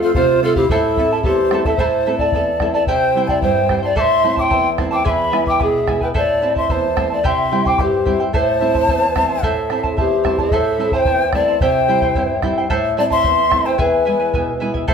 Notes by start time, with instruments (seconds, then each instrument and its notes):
Already playing: nylon-string guitar F2 A3 C4 F4
0.02 quena F4, pan flute A4, charango C5 F5
0.15 nylon-string guitar C3, quena F4, charango A4 C5 F5, pan flute C5, bombo low
0.42 nylon-string guitar A3 C4 F4, quena F4, charango A4 C5 F5, pan flute A4
0.56 quena E4, pan flute G4, charango C5 F5, bombo low
0.69 nylon-string guitar A2, quena E4, charango E4 A4 C5 E5 A5, pan flute A4, bombo low
0.96 nylon-string guitar A3 C4 E4, charango E4 A4 E5 A5, bombo low
1.12 charango E4 A4 A5
1.23 nylon-string guitar E2, charango E4 A4 E5 A5, pan flute G4, quena C5, bombo low
1.51 nylon-string guitar A3 C4 E4, charango E4 A4 E5 A5, bombo rim
1.65 charango E4 A4 A5, pan flute A4, quena E5, bombo low
1.77 nylon-string guitar A2, charango E4 A4 C5 E5 A5, pan flute C5, quena B5, bombo low
1.85 quena A5
2.06 nylon-string guitar A3 C4 E4, charango E4 A4 E5 A5
2.18 charango A4 A5, pan flute D5, quena A5, bombo low
2.22 charango E4
2.32 nylon-string guitar E2, charango E4 A4 E5 A5, bombo low
2.60 nylon-string guitar A3 C4 E4, charango E4 A4 E5 A5, bombo rim, bombo low
2.73 charango E4 A4 A5, pan flute D5, quena A5
2.87 nylon-string guitar C3, charango E4 G4 C5 E5 G5, pan flute C5, quena G5, bombo low
3.15 nylon-string guitar G3 C4 E4, charango E4 C5 E5 G5
3.27 charango E4 C5 G5, pan flute D5, quena A5, bombo low
3.42 nylon-string guitar G2, charango E4 C5 E5 G5, pan flute C5, quena G5, bombo low
3.69 nylon-string guitar G3 C4 E4, charango E4 C5 E5 G5, bombo rim, bombo low
3.83 charango E4 C5 G5, pan flute D5, quena A5
3.96 nylon-string guitar A2, charango E4 A4 C5 E5 A5, pan flute E5, quena D6, bombo low
4.01 quena C6
4.23 nylon-string guitar A3 C4 E4, charango E4 C5 E5 A5
4.36 charango E4 C5 A5, pan flute G5, quena D6, bombo low
4.42 quena C6
4.50 nylon-string guitar E2, charango E4 C5 E5 A5, bombo low
4.78 nylon-string guitar A3 C4 E4, charango E4 C5 E5 A5, bombo rim, bombo low
4.91 charango E4 C5 A5, pan flute G5, quena D6
5.04 nylon-string guitar E2, charango E4 G#4 B4 E5 G#5, pan flute E5, quena C6, bombo low
5.10 quena B5
5.31 nylon-string guitar G#3 B3 E4, charango E4 B4 E5 G#5, bombo rim
5.46 charango E4 B4 G#5, pan flute G5, quena D6, bombo low
5.59 nylon-string guitar B2, charango E4 B4 E5 G#5, pan flute G#4, quena E5, bombo low
5.87 nylon-string guitar G#3 B3 E4, charango E4 B4 E5 G#5, bombo rim, bombo low
6.01 charango E4 B4 G#5, pan flute B4, quena G5, bombo low
6.14 nylon-string guitar A2, charango E4 A4 C5 E5 A5, pan flute D5, quena A5, bombo low
6.42 nylon-string guitar A3 C4 E4, charango E4 C5 E5 A5
6.55 charango E4 C5 A5, pan flute E5, quena C6, bombo low
6.69 nylon-string guitar E2, charango E4 C5 E5 A5, pan flute C5, quena A5, bombo low
6.96 nylon-string guitar A3 C4 E4, charango E4 C5 E5 A5, bombo rim, bombo low
7.10 charango E4 C5 A5, pan flute D5, quena A5
7.23 nylon-string guitar C3, charango E4 G4 C5 E5 G5, pan flute E5, quena C6, bombo low
7.51 nylon-string guitar G3 C4 E4, charango E4 C5 E5 G5
7.65 charango E4 C5 G5, pan flute G5, quena D6, bombo low
7.78 nylon-string guitar G2, charango E4 C5 E5 G5, pan flute G4, quena C5, bombo low
8.06 nylon-string guitar G3 C4 E4, charango E4 C5 E5 G5, bombo low
8.20 charango E4 C5 G5
8.33 nylon-string guitar A2, charango E4 A4 C5 E5 A5, pan flute C5, quena A5, bombo low
8.60 nylon-string guitar A3 C4 E4, charango E4 C5 E5 A5
8.75 charango E4 C5 A5, bombo low
8.88 nylon-string guitar E2, charango E4 C5 E5 A5, bombo low
9.15 nylon-string guitar A3 C4 E4, charango E4 C5 E5 A5, bombo rim, bombo low
9.29 charango E4 C5 A5
9.43 nylon-string guitar A2, charango E4 A4 C5 E5 A5, pan flute A4, quena E5, bombo low
9.70 nylon-string guitar A3 C4 E4, charango E4 C5 E5 A5, bombo rim
9.83 charango E4 C5 A5, bombo low
9.97 nylon-string guitar E2, charango E4 C5 E5 A5, pan flute G4, quena C5, bombo low
10.24 nylon-string guitar A3 C4 E4, charango E4 C5 E5 A5, bombo rim, bombo low
10.38 charango E4 C5 A5, pan flute A4, quena E5, bombo low
10.51 nylon-string guitar A2, charango E4 A4 C5 E5 A5, bombo low
10.78 nylon-string guitar A3 C4 E4, charango E4 C5 E5 A5
10.92 charango E4 C5 A5, pan flute C5, quena G#5, bombo low
10.98 quena G5
11.05 nylon-string guitar E2, charango E4 C5 E5 A5, bombo low
11.33 nylon-string guitar A3 C4 E4, charango E4 C5 E5 A5, pan flute D5, quena A5, bombo rim, bombo low
11.48 charango E4 C5 A5
11.61 nylon-string guitar C3, charango E4 G4 C5 E5 G5, pan flute C5, quena G5, bombo low
11.88 nylon-string guitar G3 C4 E4, charango E4 C5 E5 G5
12.02 charango E4 C5 G5, bombo low
12.15 nylon-string guitar G2, charango E4 C5 E5 G5, bombo low
12.42 nylon-string guitar G3 C4 E4, charango E4 C5 E5 G5, bombo rim, bombo low
12.58 charango E4 C5 G5
12.70 nylon-string guitar A2, charango E4 A4 C5 E5 A5, bombo low
12.97 nylon-string guitar A3 C4 E4, charango E4 C5 E5 A5, pan flute D5, quena A5
13.10 charango E4 C5 A5, pan flute E5, quena C6, bombo low
13.23 nylon-string guitar E2, charango E4 C5 E5 A5, bombo low
13.50 nylon-string guitar A3 C4 E4, charango E4 C5 E5 A5, bombo rim, bombo low
13.65 charango E4 C5 A5, pan flute C5, quena G5
13.78 nylon-string guitar E2, charango E4 G#4 B4 E5 G#5, pan flute B4, quena G#5, bombo low
14.05 nylon-string guitar G#3 B3 E4, charango E4 B4 E5 G#5
14.20 charango E4 B4 G#5
14.34 nylon-string guitar B2, charango E4 B4 E5 G#5, bombo low
14.60 nylon-string guitar G#3 B3 E4, charango E4 B4 E5 G#5
14.74 charango E4 B4 G#5, bombo low
14.88 nylon-string guitar A2, charango E4 A4 C5 E5 A5, bombo low